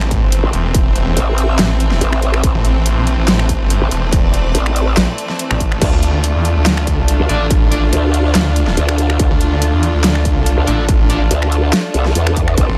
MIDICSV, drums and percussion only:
0, 0, Header, 1, 2, 480
1, 0, Start_track
1, 0, Key_signature, -1, "minor"
1, 0, Tempo, 422535
1, 846, Time_signature, 4, 2, 24, 8
1, 14517, End_track
2, 0, Start_track
2, 0, Title_t, "Drums"
2, 15, Note_on_c, 9, 26, 60
2, 126, Note_on_c, 9, 36, 65
2, 126, Note_on_c, 9, 42, 51
2, 128, Note_off_c, 9, 26, 0
2, 240, Note_off_c, 9, 36, 0
2, 240, Note_off_c, 9, 42, 0
2, 366, Note_on_c, 9, 42, 76
2, 480, Note_off_c, 9, 42, 0
2, 606, Note_on_c, 9, 42, 53
2, 720, Note_off_c, 9, 42, 0
2, 846, Note_on_c, 9, 36, 120
2, 846, Note_on_c, 9, 42, 78
2, 960, Note_off_c, 9, 36, 0
2, 960, Note_off_c, 9, 42, 0
2, 1086, Note_on_c, 9, 42, 50
2, 1200, Note_off_c, 9, 42, 0
2, 1326, Note_on_c, 9, 42, 78
2, 1440, Note_off_c, 9, 42, 0
2, 1566, Note_on_c, 9, 42, 51
2, 1680, Note_off_c, 9, 42, 0
2, 1806, Note_on_c, 9, 38, 118
2, 1806, Note_on_c, 9, 42, 77
2, 1920, Note_off_c, 9, 38, 0
2, 1920, Note_off_c, 9, 42, 0
2, 2046, Note_on_c, 9, 42, 51
2, 2160, Note_off_c, 9, 42, 0
2, 2175, Note_on_c, 9, 38, 39
2, 2287, Note_on_c, 9, 42, 75
2, 2288, Note_off_c, 9, 38, 0
2, 2400, Note_off_c, 9, 42, 0
2, 2415, Note_on_c, 9, 26, 80
2, 2527, Note_on_c, 9, 42, 50
2, 2528, Note_off_c, 9, 26, 0
2, 2640, Note_off_c, 9, 42, 0
2, 2655, Note_on_c, 9, 26, 63
2, 2766, Note_on_c, 9, 36, 120
2, 2767, Note_on_c, 9, 42, 82
2, 2768, Note_off_c, 9, 26, 0
2, 2880, Note_off_c, 9, 36, 0
2, 2880, Note_off_c, 9, 42, 0
2, 3006, Note_on_c, 9, 42, 54
2, 3120, Note_off_c, 9, 42, 0
2, 3247, Note_on_c, 9, 42, 78
2, 3360, Note_off_c, 9, 42, 0
2, 3486, Note_on_c, 9, 42, 52
2, 3600, Note_off_c, 9, 42, 0
2, 3727, Note_on_c, 9, 38, 114
2, 3727, Note_on_c, 9, 42, 74
2, 3840, Note_off_c, 9, 38, 0
2, 3840, Note_off_c, 9, 42, 0
2, 3855, Note_on_c, 9, 26, 65
2, 3966, Note_on_c, 9, 36, 60
2, 3966, Note_on_c, 9, 42, 52
2, 3969, Note_off_c, 9, 26, 0
2, 4080, Note_off_c, 9, 36, 0
2, 4080, Note_off_c, 9, 42, 0
2, 4206, Note_on_c, 9, 42, 79
2, 4320, Note_off_c, 9, 42, 0
2, 4446, Note_on_c, 9, 42, 54
2, 4560, Note_off_c, 9, 42, 0
2, 4686, Note_on_c, 9, 36, 120
2, 4686, Note_on_c, 9, 42, 87
2, 4800, Note_off_c, 9, 36, 0
2, 4800, Note_off_c, 9, 42, 0
2, 4926, Note_on_c, 9, 42, 52
2, 5040, Note_off_c, 9, 42, 0
2, 5166, Note_on_c, 9, 42, 85
2, 5280, Note_off_c, 9, 42, 0
2, 5295, Note_on_c, 9, 26, 69
2, 5406, Note_on_c, 9, 42, 55
2, 5408, Note_off_c, 9, 26, 0
2, 5520, Note_off_c, 9, 42, 0
2, 5647, Note_on_c, 9, 38, 117
2, 5647, Note_on_c, 9, 42, 86
2, 5760, Note_off_c, 9, 38, 0
2, 5760, Note_off_c, 9, 42, 0
2, 5887, Note_on_c, 9, 42, 55
2, 6000, Note_off_c, 9, 42, 0
2, 6015, Note_on_c, 9, 38, 39
2, 6126, Note_on_c, 9, 42, 82
2, 6129, Note_off_c, 9, 38, 0
2, 6240, Note_off_c, 9, 42, 0
2, 6255, Note_on_c, 9, 26, 86
2, 6366, Note_on_c, 9, 36, 62
2, 6367, Note_on_c, 9, 42, 55
2, 6369, Note_off_c, 9, 26, 0
2, 6480, Note_off_c, 9, 36, 0
2, 6480, Note_off_c, 9, 42, 0
2, 6495, Note_on_c, 9, 26, 68
2, 6606, Note_on_c, 9, 36, 125
2, 6606, Note_on_c, 9, 42, 85
2, 6606, Note_on_c, 9, 49, 77
2, 6608, Note_off_c, 9, 26, 0
2, 6720, Note_off_c, 9, 36, 0
2, 6720, Note_off_c, 9, 42, 0
2, 6720, Note_off_c, 9, 49, 0
2, 6846, Note_on_c, 9, 42, 55
2, 6960, Note_off_c, 9, 42, 0
2, 7086, Note_on_c, 9, 42, 85
2, 7200, Note_off_c, 9, 42, 0
2, 7326, Note_on_c, 9, 42, 56
2, 7440, Note_off_c, 9, 42, 0
2, 7566, Note_on_c, 9, 38, 121
2, 7566, Note_on_c, 9, 42, 81
2, 7680, Note_off_c, 9, 38, 0
2, 7680, Note_off_c, 9, 42, 0
2, 7694, Note_on_c, 9, 26, 66
2, 7806, Note_on_c, 9, 36, 66
2, 7806, Note_on_c, 9, 42, 56
2, 7808, Note_off_c, 9, 26, 0
2, 7920, Note_off_c, 9, 36, 0
2, 7920, Note_off_c, 9, 42, 0
2, 8046, Note_on_c, 9, 42, 82
2, 8159, Note_off_c, 9, 42, 0
2, 8286, Note_on_c, 9, 42, 57
2, 8400, Note_off_c, 9, 42, 0
2, 8526, Note_on_c, 9, 36, 127
2, 8526, Note_on_c, 9, 42, 84
2, 8639, Note_off_c, 9, 42, 0
2, 8640, Note_off_c, 9, 36, 0
2, 8766, Note_on_c, 9, 42, 54
2, 8879, Note_off_c, 9, 42, 0
2, 9006, Note_on_c, 9, 42, 90
2, 9119, Note_off_c, 9, 42, 0
2, 9246, Note_on_c, 9, 42, 56
2, 9359, Note_off_c, 9, 42, 0
2, 9485, Note_on_c, 9, 38, 121
2, 9485, Note_on_c, 9, 42, 82
2, 9599, Note_off_c, 9, 38, 0
2, 9599, Note_off_c, 9, 42, 0
2, 9726, Note_on_c, 9, 42, 55
2, 9839, Note_off_c, 9, 42, 0
2, 9854, Note_on_c, 9, 38, 40
2, 9965, Note_on_c, 9, 42, 81
2, 9968, Note_off_c, 9, 38, 0
2, 10079, Note_off_c, 9, 42, 0
2, 10094, Note_on_c, 9, 26, 86
2, 10206, Note_on_c, 9, 42, 56
2, 10208, Note_off_c, 9, 26, 0
2, 10319, Note_off_c, 9, 42, 0
2, 10334, Note_on_c, 9, 26, 67
2, 10446, Note_on_c, 9, 36, 127
2, 10446, Note_on_c, 9, 42, 84
2, 10448, Note_off_c, 9, 26, 0
2, 10559, Note_off_c, 9, 42, 0
2, 10560, Note_off_c, 9, 36, 0
2, 10686, Note_on_c, 9, 42, 53
2, 10799, Note_off_c, 9, 42, 0
2, 10926, Note_on_c, 9, 42, 86
2, 11039, Note_off_c, 9, 42, 0
2, 11166, Note_on_c, 9, 42, 53
2, 11279, Note_off_c, 9, 42, 0
2, 11406, Note_on_c, 9, 38, 123
2, 11406, Note_on_c, 9, 42, 81
2, 11519, Note_off_c, 9, 38, 0
2, 11519, Note_off_c, 9, 42, 0
2, 11534, Note_on_c, 9, 26, 63
2, 11646, Note_on_c, 9, 36, 70
2, 11646, Note_on_c, 9, 42, 57
2, 11648, Note_off_c, 9, 26, 0
2, 11759, Note_off_c, 9, 42, 0
2, 11760, Note_off_c, 9, 36, 0
2, 11886, Note_on_c, 9, 42, 83
2, 11999, Note_off_c, 9, 42, 0
2, 12126, Note_on_c, 9, 42, 56
2, 12240, Note_off_c, 9, 42, 0
2, 12366, Note_on_c, 9, 36, 127
2, 12366, Note_on_c, 9, 42, 79
2, 12480, Note_off_c, 9, 36, 0
2, 12480, Note_off_c, 9, 42, 0
2, 12606, Note_on_c, 9, 42, 53
2, 12720, Note_off_c, 9, 42, 0
2, 12846, Note_on_c, 9, 42, 82
2, 12960, Note_off_c, 9, 42, 0
2, 12974, Note_on_c, 9, 26, 62
2, 13086, Note_on_c, 9, 42, 51
2, 13088, Note_off_c, 9, 26, 0
2, 13200, Note_off_c, 9, 42, 0
2, 13326, Note_on_c, 9, 38, 127
2, 13326, Note_on_c, 9, 42, 82
2, 13440, Note_off_c, 9, 38, 0
2, 13440, Note_off_c, 9, 42, 0
2, 13566, Note_on_c, 9, 42, 55
2, 13680, Note_off_c, 9, 42, 0
2, 13695, Note_on_c, 9, 38, 39
2, 13806, Note_on_c, 9, 42, 74
2, 13809, Note_off_c, 9, 38, 0
2, 13920, Note_off_c, 9, 42, 0
2, 13935, Note_on_c, 9, 26, 75
2, 14046, Note_on_c, 9, 36, 65
2, 14047, Note_on_c, 9, 42, 57
2, 14048, Note_off_c, 9, 26, 0
2, 14160, Note_off_c, 9, 36, 0
2, 14160, Note_off_c, 9, 42, 0
2, 14175, Note_on_c, 9, 26, 63
2, 14286, Note_on_c, 9, 36, 122
2, 14286, Note_on_c, 9, 42, 74
2, 14288, Note_off_c, 9, 26, 0
2, 14400, Note_off_c, 9, 36, 0
2, 14400, Note_off_c, 9, 42, 0
2, 14517, End_track
0, 0, End_of_file